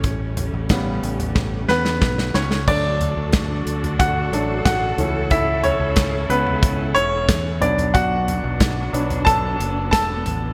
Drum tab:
CC |----------------|x---------------|----------------|----------------|
HH |x-x-x-xx--------|--x-x-xxx-x-x-x-|x-x-x-x-x-x-x-xx|x-x-x-xxx-x-x-x-|
SD |----o---o-oooooo|----o-------o---|----o-------o---|----o-------o---|
FT |--o----o--------|--o----o------o-|--o----o------oo|--o----o------o-|
BD |o---o---o---o---|o---o---o---o---|o---o---o---o---|o---o---o---o---|